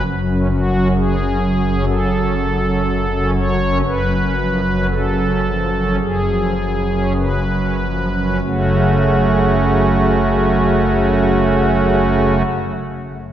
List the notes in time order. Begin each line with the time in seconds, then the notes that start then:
0.05 F#1 F#2
0.28 C#4
0.50 F#3 F#4
0.73 C#4
0.95 C#3 G#4
1.18 C#4
1.42 F#3
1.64 C#4
1.87 C#3 A4
2.11 C#4
2.36 F#3
2.61 C#4
2.85 C#3
3.10 C#4
3.34 F#3 C#5
3.60 C#4
3.85 F#1 F#2 B4
4.12 C#4
4.37 F3
4.64 C#4
4.90 C#3 A4
5.17 C#4
5.45 F3
5.72 C#4
6.00 F#1 F#2 G#4
6.28 F3
6.56 C#3
6.86 C#4
7.16 C#3 B4
7.47 C#4
7.78 F3
8.11 C#4
8.41 F#1 F#2 C#3 A3 C#4 F#4